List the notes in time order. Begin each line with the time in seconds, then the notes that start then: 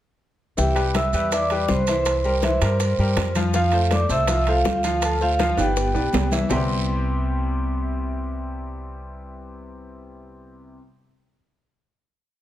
0.57 C2 E3 E4 G4 E5 G5, high bongo, high conga, long guiro, maracas
0.75 G3 G4 B4, high conga, high timbale, maracas
0.94 E5 E6, high bongo, high conga, high timbale, short guiro, maracas
1.13 E2 G3 G4 B4, high conga, short guiro, maracas
1.31 E3 E4 D5 E5 D6, high bongo, high conga, high timbale, long guiro, maracas
1.50 G3 G4 B4, high conga, high timbale, maracas
1.68 C2 C5 C6, high bongo, low bongo, high conga, short guiro, maracas
1.87 E3 E4 C5 E5 C6, high conga, high timbale, short guiro, maracas
2.06 high bongo, high conga, high timbale, long guiro, maracas
2.24 G3 G4 A#4, high bongo, high conga, maracas
2.42 E3 E4 E5, high bongo, high conga, high timbale, short guiro, maracas
2.61 G2 G3 G4 A#4, high bongo, high timbale, short guiro, maracas
2.79 high bongo, high conga, high timbale, long guiro, maracas
2.98 G2 G3 G4 A#4, high conga, maracas
3.16 F2, high bongo, low bongo, high conga, high timbale, short guiro, maracas
3.35 F3 F4 F5, high bongo, high conga, high timbale, short guiro, maracas
3.54 F3 F4 F5, high bongo, high conga, long guiro, maracas
3.72 A3 A4 C5, high conga, high timbale, maracas
3.91 D5 D6, high bongo, high conga, high timbale, short guiro, maracas
4.09 C2 A3 A4 C5 E5 E6, high conga, short guiro, maracas
4.27 F3 F4 F5, high bongo, high conga, high timbale, long guiro, maracas
4.47 A3 F4 A4 C5 F5, high conga, high timbale, maracas
4.64 D2, high bongo, low bongo, high conga, short guiro, maracas
4.83 F3 F4 F5, high conga, high timbale, short guiro, maracas
5.01 A4 A5, high bongo, high conga, high timbale, long guiro, maracas
5.21 A3 F4 A4 C5 F5, high bongo, high conga, maracas
5.39 F3 F4 F5, high bongo, high conga, high timbale, short guiro, maracas
5.57 G1 B3 G4 B4 D5 G5, high bongo, high timbale, short guiro, maracas
5.76 high bongo, high conga, long guiro, maracas
5.94 B1 B3 B4 D5, high conga, high timbale, maracas
6.13 C2, high bongo, low bongo, high conga, low timbale, short guiro, maracas
6.31 E3 E4 E5, high bongo, high conga, low timbale, short guiro, maracas
6.49 C2 C3 G3 B3 C4 E4 G4 C6, low bongo, low conga, low timbale, long guiro, maracas